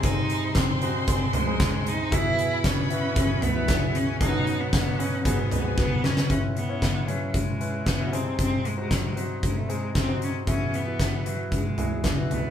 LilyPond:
<<
  \new Staff \with { instrumentName = "Violin section" } { \time 4/4 \key cis \minor \tempo 4 = 115 <bis' bis''>1 | <b' b''>2. <gis' gis''>4 | <fis' fis''>2 <gis' gis''>2 | r1 |
r1 | r1 | }
  \new Staff \with { instrumentName = "Grand piano" } { \time 4/4 \key cis \minor <bis dis' gis'>4 r8 <bis dis' fis'>4 r16 <bis dis' gis'>4 r16 | <e' fis' gis'>4 r8 <e' fis' b'>4 r16 <e' fis' b'>4 r16 | <cis' dis' a' b'>4 r8 <cis' dis' b'>8 <b fis' gis'>8 r16 <b fis' b'>4 r16 | <cis' e' b'>8 r16 <cis' e' cis''>8 r16 <cis' e' b'>8. r16 <cis' e' b'>8 r16 <cis' e' fis'>16 <bis dis' gis'>8~ |
<bis dis' gis'>8 r16 <bis dis' fis'>8 r16 <bis dis' fis'>8. r16 <bis dis' gis'>8 r16 <bis dis' fis'>8 r16 | <e' fis' gis'>8 r16 <e' fis' b'>8 r16 <e' fis' b'>8. r16 <e' fis' gis'>8 r16 <e' fis' b'>8 r16 | }
  \new Staff \with { instrumentName = "Grand piano" } { \clef bass \time 4/4 \key cis \minor <bis,, bis,>2.~ <bis,, bis,>8 r8 | <e, e>1 | <b,, b,>2 <gis,, gis,>2 | <cis, cis>2.~ <cis, cis>8 <bis,, bis,>8~ |
<bis,, bis,>2.~ <bis,, bis,>8 r8 | <e, e>1 | }
  \new Staff \with { instrumentName = "Clean electric guitar" } { \time 4/4 \key cis \minor <bis, dis gis bis dis' gis'>8 <gis bis dis' gis'>8 <gis bis dis' gis'>8 <gis bis dis' gis'>8 <bis, dis gis bis dis' gis'>8 <gis bis dis' gis'>8 <gis bis dis' gis'>8 <gis bis dis' gis'>8 | <e fis b fis' gis'>8 <b fis' gis'>8 <fis b fis' gis'>8 <b fis' gis'>8 <e fis b fis' gis'>8 <b fis' gis'>8 <fis b fis' gis'>8 <b fis' gis'>8 | <b, dis fis cis' dis' b'>8 <fis cis' dis' b'>8 <fis cis' dis' b'>8 <fis cis' dis' b'>8 <gis, dis fis b dis' b'>8 <fis b dis' b'>8 <fis b dis' b'>8 <fis b dis' b'>8 | r1 |
r1 | r1 | }
  \new Staff \with { instrumentName = "Cello" } { \time 4/4 \key cis \minor dis'4 bis4 bis8 gis4 dis'8 | e'4 cis'4 cis'8 b4 cis'8 | dis'8. b16 b8 cis'8 b4 b8 cis'8 | cis'8 b4 fis8 gis4 b8 bis8 |
bis8 gis16 gis16 fis16 gis16 fis8 gis16 a16 gis8 bis8 cis'8 | cis'8 b4 fis8 gis4 r8 b8 | }
  \new DrumStaff \with { instrumentName = "Drums" } \drummode { \time 4/4 <hh bd>8 hh8 <hh bd sn>8 hh8 <hh bd>8 <hh tomfh>8 <hh bd sn>8 hh8 | <hh bd>8 hh8 <hh bd sn>8 hh8 <hh bd>8 <hh tomfh>8 <hh bd sn>8 hh8 | <hh bd>8 hh8 <hh bd sn>8 hh8 <hh bd>8 <hh tomfh>8 <bd sn>8 sn16 sn16 | <hh bd>8 hh8 <hh bd sn>8 hh8 <hh bd>8 hh8 <hh bd sn>8 hh8 |
<hh bd>8 hh8 <hh bd sn>8 hh8 <hh bd>8 hh8 <hh bd sn>8 hh8 | <hh bd>8 hh8 <hh bd sn>8 hh8 <hh bd>8 <hh tomfh>8 <hh bd sn>8 <hh tomfh>8 | }
>>